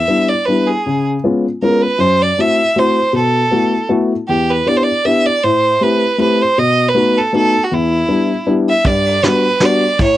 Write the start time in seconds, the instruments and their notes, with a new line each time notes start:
Already playing: violin E5
0.08 upright piano G3 B3 D4 E4
0.28 violin D5
0.45 upright piano G3 B3 D4 E4, violin B4
0.67 violin G#4
0.86 upright piano C#3
1.24 upright piano G#3 B3 C#4 F4
1.62 upright piano G#3 B3 C#4 F4, violin A#4
1.82 violin B4
1.98 upright piano F#2, violin C5
2.22 violin D5
2.38 upright piano A3 C4 E4 F#4, violin E5
2.76 upright piano A3 C4 E4 F#4, violin C5
3.13 upright piano B2, violin A4
3.51 upright piano A3 B3 E4 F#4
3.89 upright piano A3 B3 E4 F#4
4.28 upright piano E2, violin G4
4.50 violin B4
4.66 upright piano B3 D4 E4 G4, violin D5
4.77 violin C5
4.83 violin D5
5.05 upright piano B3 D4 E4 G4, violin E5
5.26 violin D5
5.43 upright piano A2, violin C5
5.81 upright piano A3 C4 E4 G4, violin B4
6.18 upright piano A3 C4 E4 G4, violin B4
6.42 violin C5
6.58 upright piano B2, violin D#5
6.89 violin B4
6.95 upright piano A3 B3 D#4 F#4
7.18 violin A4
7.33 upright piano A3 B3 D#4 F#4, violin A4
7.64 violin F#4
7.71 upright piano E2, violin E4
8.08 upright piano G3 B3 D4 E4
8.47 upright piano G3 B3 D4 E4
8.69 violin E5
8.85 upright piano G2, violin D5, kick, ride
9.06 ride
9.23 upright piano G3 B3 D4 F#4, violin B4, snare, ride
9.60 upright piano G3 B3 D4 F#4, snare, ride
9.65 violin D5
9.99 upright piano A2, kick, ride
10.03 violin C#5